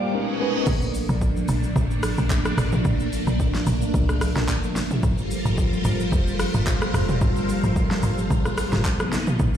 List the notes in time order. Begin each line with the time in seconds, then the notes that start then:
Already playing: G3 A#3 C4 F4 A#4 D5 F5 G5 D6, reverse cymbal
0.00 G4 C5
0.12 G#3 B3 C#4 D#4 A#4 D#5 G#5 C#6
0.39 G#3 B3 C#4 D#4 B4
0.67 A#1 A3 A#3 D4, kick, crash, low conga, shaker
0.82 shaker
0.94 open hi-hat, high conga, shaker
1.09 A#1, high conga, shaker
1.22 kick, shaker
1.37 high conga, shaker
1.48 A#1, open hi-hat, shaker
1.63 high conga, shaker
1.76 A1, kick, low conga, shaker
1.91 shaker
2.03 cross-stick, open hi-hat, high conga, shaker
2.18 A#1, shaker
2.30 kick, clap, shaker
2.45 cross-stick, high conga, shaker
2.58 A1, cross-stick, open hi-hat, low conga, shaker
2.72 mid tom, high conga, shaker
2.85 A#1, kick, low conga, shaker
3.00 shaker
3.12 open hi-hat, high conga, shaker
3.27 A#1, high conga, shaker
3.40 kick, shaker
3.54 snare, high conga, shaker
3.66 A#1, open hi-hat, shaker
3.82 high conga, shaker
3.94 C2, kick, low conga, shaker
4.09 cross-stick, shaker
4.21 cross-stick, open hi-hat, high conga, shaker
4.36 A#1, snare, shaker
4.49 kick, clap, shaker
4.63 high conga, shaker
4.76 snare, open hi-hat, low conga, shaker
4.91 mid tom, high conga, shaker
5.03 G1 G3 F4 A4 A#4 C5, kick, low conga, shaker
5.18 shaker
5.30 open hi-hat, high conga, shaker
5.45 G1, high conga, shaker
5.58 kick, shaker
5.73 high conga, shaker
5.85 G1, open hi-hat, shaker
6.00 high conga, shaker
6.12 F1, kick, low conga, shaker
6.27 shaker
6.39 cross-stick, open hi-hat, high conga, shaker
6.54 G1, shaker
6.67 kick, clap, shaker
6.82 cross-stick, high conga, shaker
6.94 F1, cross-stick, open hi-hat, low conga, shaker
7.09 mid tom, high conga, shaker
7.21 G1, kick, low conga, shaker
7.36 shaker
7.48 open hi-hat, high conga, shaker
7.64 G1, high conga, shaker
7.76 kick, shaker
7.91 snare, high conga, shaker
8.03 G1, open hi-hat, shaker
8.18 high conga, shaker
8.30 A#1, kick, low conga, shaker
8.45 cross-stick, shaker
8.58 cross-stick, open hi-hat, high conga, shaker
8.72 G1, snare, mid tom, shaker
8.85 A#3 B3 D#4, kick, clap, shaker
9.00 cross-stick, high conga, shaker
9.12 snare, open hi-hat, low conga, shaker
9.27 mid tom, high conga, shaker
9.39 A#1 A3 D4, kick, low conga, shaker